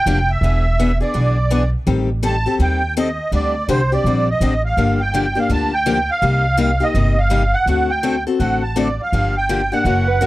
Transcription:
Already playing: accordion G5
0.06 upright bass F1, steel-string acoustic guitar D3 F3 A#3 D4 G4
0.31 accordion E5
0.41 upright bass E1, steel-string acoustic guitar E3 B3 D4 G#4
0.79 steel-string acoustic guitar E3 B3 D4 G#4
1.00 steel-string acoustic guitar B3 D4 G#4, accordion D5
1.14 upright bass B1, steel-string acoustic guitar E3 B3 D4 G#4
1.50 steel-string acoustic guitar E3 B3 D4 G#4
1.87 upright bass A1, steel-string acoustic guitar D#3 G3 C4 G4 A4
2.23 steel-string acoustic guitar D#3 G3 C4 G4 A4, accordion A5
2.46 steel-string acoustic guitar C4 G4 A4
2.59 upright bass D#2, steel-string acoustic guitar D#3 G3 C4 G4 A4, accordion G5
2.97 steel-string acoustic guitar D#3 G3 C4 G4 A4, accordion D#5
3.32 upright bass D2, steel-string acoustic guitar D3 G3 C4 D4 G4, accordion D5
3.68 upright bass C2, steel-string acoustic guitar D3 G3 C4 D4 G4, accordion C5
3.92 steel-string acoustic guitar C4 D4 G4, accordion D5
4.04 upright bass A#1, steel-string acoustic guitar D3 G3 C4 D4 G4
4.30 accordion D#5
4.41 upright bass A1, steel-string acoustic guitar D3 G3 C4 D4 G4
4.65 accordion F5
4.77 upright bass G1, steel-string acoustic guitar D3 F3 A#3 D4 G4
5.01 accordion G5
5.14 steel-string acoustic guitar D3 F3 A#3 D4 G4
5.35 steel-string acoustic guitar A#3 D4 G4
5.39 accordion F5
5.50 upright bass D2, steel-string acoustic guitar D3 F3 A#3 D4 G4, accordion A5
5.74 accordion G5
5.86 steel-string acoustic guitar D3 F3 A#3 D4 G4
6.11 accordion F5
6.22 upright bass C2, steel-string acoustic guitar C3 G3 A#3 D#4 G4
6.57 steel-string acoustic guitar C3 G3 A#3 D#4 G4
6.80 steel-string acoustic guitar A#3 D#4 G4, accordion D#5
6.94 upright bass G1, steel-string acoustic guitar C3 G3 A#3 D#4 G4
7.18 accordion F5
7.30 steel-string acoustic guitar C3 G3 A#3 D#4 G4
7.54 accordion F#5
7.66 upright bass D2, steel-string acoustic guitar D3 A3 C4 F#4 A4
7.90 accordion G5
8.03 steel-string acoustic guitar D3 A3 C4 F#4 A4
8.27 steel-string acoustic guitar C4 F#4 A4
8.40 upright bass A1, steel-string acoustic guitar D3 A3 C4 F#4 A4, accordion F#5
8.63 accordion A5
8.76 steel-string acoustic guitar D3 A3 C4 F#4 A4, accordion D5
9.02 accordion F5
9.12 upright bass G1, steel-string acoustic guitar D3 F3 A#3 D4 G4
9.37 accordion G5
9.49 steel-string acoustic guitar D3 F3 A#3 D4 G4
9.72 steel-string acoustic guitar A#3 D4 G4, accordion F#5
9.85 upright bass F#1, steel-string acoustic guitar C#3 E3 A#3 C#4 F#4
10.07 clarinet B4
10.21 steel-string acoustic guitar C#3 E3 A#3 C#4 F#4, clarinet A#4

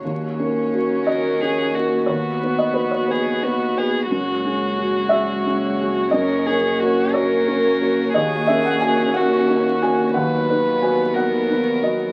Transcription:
0.04 double bass D#2, felt piano D#2, string section A#3 F#4 C#5, cello C#4
0.39 felt piano C#4 A#4
0.74 felt piano F#4 A#4
1.06 felt piano F#4 A#4 D#5, violin A#4
1.41 felt piano C#4 A#4, violin G#4
1.75 violin F#4, felt piano F#4 A#4
2.06 felt piano D#2 C#5, string section B3 B4, cello B3, violin F#4
2.43 felt piano B3 B4
2.58 felt piano D#5
2.74 felt piano F#4 B4
2.91 felt piano C#5
3.08 felt piano F#4 B4, violin G#4
3.43 felt piano B3 B4, violin F#4
3.77 felt piano F#4 B4, violin G#4
4.10 double bass F#1, felt piano F#2, string section G#3 C#5, cello G#3, violin F#4
4.45 felt piano C#4 G#4
4.79 felt piano F#4 G#4
5.09 felt piano F#4 G#4 E5
5.46 felt piano C#4 G#4
5.79 felt piano F#4 G#4
6.11 felt piano F#2 D#5, string section A#3 F#4, cello C#4, violin A#4
6.46 felt piano C#4 A#4, violin G#4
6.80 violin F#4, felt piano F#4 A#4
7.14 felt piano F#4 A#4 C#5, violin A#4
7.47 felt piano C#4 A#4
7.81 felt piano F#4 A#4
8.14 double bass D#2, felt piano D#2 D#5, cello C#4, violin G#4
8.47 felt piano C#4 A#4 E5
8.65 felt piano F#5
8.80 felt piano F#4 A#4 G#5
9.14 violin F#4, felt piano F#4 A#4 F#5
9.49 felt piano C#4 A#4
9.82 felt piano F#4 A#4 G#5
10.14 felt piano D#2 F#5, string section F#3 B3, cello B3, violin B4
10.50 felt piano D#4 B4
10.82 felt piano F#4 B4 G#5
11.14 felt piano B3 F#4 F#5, violin A#4
11.49 felt piano B3 D#4
11.82 felt piano B3 F#4 D#5

